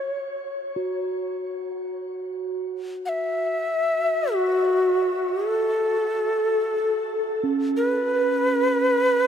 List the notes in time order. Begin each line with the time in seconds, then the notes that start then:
Already playing: C#5
0.76 F#4
3.06 E5 F#5
4.34 F#4
5.45 A4
7.44 C#4
7.77 B4